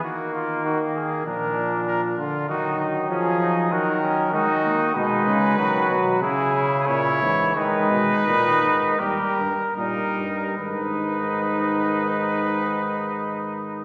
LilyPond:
<<
  \new Staff \with { instrumentName = "Trumpet" } { \time 4/4 \key gis \minor \tempo 4 = 93 fis'8 eis'8 fis'8 gis'8 ais'4 ais'8 eis'8 | fis'8 r8 gis'4 ais'4 fis'4 | b'2 gis'4 cis''4 | b'2 ais'4 ais'4 |
b'1 | }
  \new Staff \with { instrumentName = "Flugelhorn" } { \time 4/4 \key gis \minor ais2 d'4. r8 | dis'8 dis'8 cis'8 dis'8 fis'8 cis'8 dis'4 | dis'4 fis'4 e'4 e'4 | dis'2 g'8 r8 dis'4 |
dis'1 | }
  \new Staff \with { instrumentName = "Trombone" } { \clef bass \time 4/4 \key gis \minor dis2 eis4. r8 | fis2 fis4 gis8 ais8 | gis4 fis4 cis4. e8 | gis4 dis4 g8 r8 g4 |
dis1 | }
  \new Staff \with { instrumentName = "Bass trombone" } { \clef bass \time 4/4 \key gis \minor r4 dis4 ais,4. d8 | dis4 eis4 dis4 dis4 | b,8 cis8 dis8 b,8 cis4 ais,8 gis,8 | dis8 b,8 ais,8 gis,8 dis,8 g,8 ais,8 g,8 |
gis,1 | }
>>